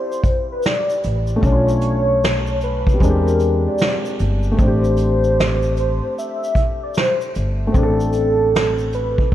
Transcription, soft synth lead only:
0.00 0.47 C5 medium
0.52 0.64 B4 medium
0.66 1.01 D5 medium
1.45 2.59 C#5 loud
2.63 2.98 B4 medium
3.03 3.63 A#4 medium
3.68 4.02 D5 medium
4.61 5.74 C5 loud
5.79 6.14 C5 medium
6.18 6.85 E5 medium
6.83 6.95 D5 medium
6.97 7.32 C5 medium
7.76 8.96 A4 loud
8.95 9.29 B4 medium

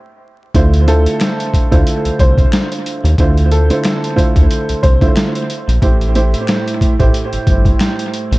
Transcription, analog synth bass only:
0.55 1.07 D2 loud
1.72 1.83 D2 medium
2.05 2.11 C2 soft
2.19 2.46 C2 medium
3.04 3.15 D#2 medium
3.18 3.71 D2 loud
4.36 4.47 D2 medium
4.69 4.75 C2 medium
4.83 5.09 C2 medium
5.68 5.79 A#1 loud
5.82 6.35 A1 loud
7.00 7.11 A1 medium
7.33 7.38 G1 soft
7.47 7.73 G1 medium
8.32 8.39 A#1 medium

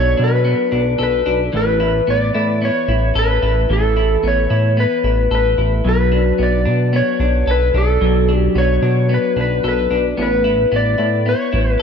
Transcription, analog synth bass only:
0.00 0.15 B1 loud
0.19 0.55 B2 loud
0.72 0.96 B1 loud
0.99 1.23 B1 loud
1.27 1.50 B1 loud
1.54 2.01 A1 loud
2.08 2.32 A1 medium
2.35 2.70 A2 loud
2.88 3.12 A1 loud
3.15 3.39 A1 loud
3.43 3.66 A1 loud
3.70 4.17 A1 loud
4.23 4.47 A1 medium
4.51 4.86 A2 loud
5.04 5.28 A1 loud
5.31 5.55 A1 loud
5.58 5.82 A1 loud
5.85 6.33 B1 loud
6.39 6.68 B1 loud
6.66 7.02 B2 loud
7.20 7.44 B1 loud
7.47 7.71 B1 loud
7.74 7.98 B1 loud
8.01 8.49 B1 loud
8.55 8.79 B1 loud
8.82 9.18 B2 loud
9.36 9.60 B1 loud
9.64 9.88 B1 loud
9.91 10.15 B1 medium
10.18 10.66 A1 loud
10.72 10.96 A1 medium
10.99 11.35 A2 loud
11.53 11.77 A1 loud

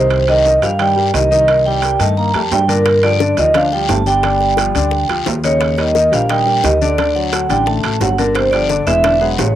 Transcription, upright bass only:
0.00 0.56 C2 loud
0.62 1.10 G2 medium
1.14 1.94 C2 medium
2.00 2.32 G2 medium
2.34 2.50 F2 medium
2.51 3.32 G2 medium
3.38 3.86 D2 medium
3.89 4.69 G1 loud
4.75 5.07 D2 medium
5.09 5.25 D2 medium
5.27 6.07 D#2 medium
6.12 6.60 A#1 medium
6.64 7.44 D2 medium
7.49 7.81 A1 medium
7.84 8.00 A1 medium
8.00 8.81 G1 medium
8.87 9.35 E1 loud
9.38 9.55 A1 medium

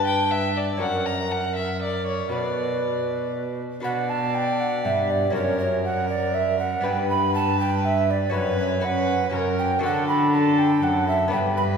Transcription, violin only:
0.07 0.32 G5 medium
0.31 0.58 E5 medium
0.56 0.83 D5 medium
0.81 1.07 F#5 medium
1.06 1.33 A#5 medium
1.32 1.55 F#5 medium
1.56 1.81 E5 medium
1.82 2.06 D5 medium
2.07 2.32 C#5 medium
2.32 3.32 D5 medium
3.84 5.31 D5 medium
5.35 5.84 A#4 medium
5.85 6.86 A#4 medium
6.84 8.33 B4 medium
8.34 8.83 B4 medium
8.84 9.32 B4 medium
9.34 9.82 A#4 medium
9.83 10.29 A4 medium
10.33 10.81 A4 medium
10.82 11.33 A4 medium
11.32 11.77 B4 medium

